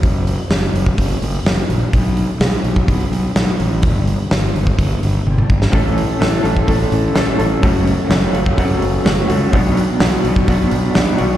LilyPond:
<<
  \new Staff \with { instrumentName = "Clean electric guitar" } { \time 4/4 \key a \mixolydian \tempo 4 = 126 r1 | r1 | r1 | <a, e a cis' a'>4 <a, e a cis' a'>8 <a cis' a'>8 <e a cis' a'>4 <e a cis' a'>8 <a cis' a'>8 |
<fis, cis fis a cis' fis'>4 <fis, cis fis a cis' fis'>8 <fis a cis' fis'>8 <fis a cis' fis'>4 <fis a cis' fis'>8 <fis a cis' fis'>8 | <b, fis b d' fis'>4 <b, fis b d' fis'>8 <b d' fis'>8 <fis b d' fis'>4 <fis b d' fis'>8 <b d' fis'>8 | }
  \new Staff \with { instrumentName = "Fingered electric bass" } { \clef bass \time 4/4 \key a \mixolydian fis,,4 fis,,8 fis,,8 fis,,8 fis,,8 fis,,8 ais,,8 | b,,4 b,,8 b,,8 b,,8 b,,8 b,,8 a,,8 | g,,4 g,,8 g,,8 g,,8 g,,8 g,,8 g,,8 | a,,4 a,,8 a,,8 a,,8 a,,8 a,,8 a,,8 |
fis,,4 fis,,8 fis,,8 fis,,8 fis,,8 fis,,8 cis,8 | b,,4 b,,8 b,,8 b,,8 b,,8 b,,8 b,,8 | }
  \new DrumStaff \with { instrumentName = "Drums" } \drummode { \time 4/4 <hho bd>8 hho8 <hho sn>8 hho16 bd16 <hho bd>8 hho8 <hho sn>8 hho8 | <hho bd>8 hho8 <hho sn>8 hho16 bd16 <hho bd>8 hho8 <hho sn>8 hho8 | <hho bd>8 hho8 <hho sn>8 hho16 bd16 <hho bd>8 hho8 tommh16 toml16 bd16 sn16 | <hho bd>8 hho8 <hho sn>8 hho16 bd16 <hho bd>8 hho8 <hho sn>8 hho8 |
<hho bd>8 hho8 <hho sn>8 hho16 bd16 <hho bd>8 hho8 <hho sn>8 hho8 | <hho bd>8 hho8 <hho sn>8 hho16 bd16 <hho bd>8 hho8 <hho sn>8 hho8 | }
>>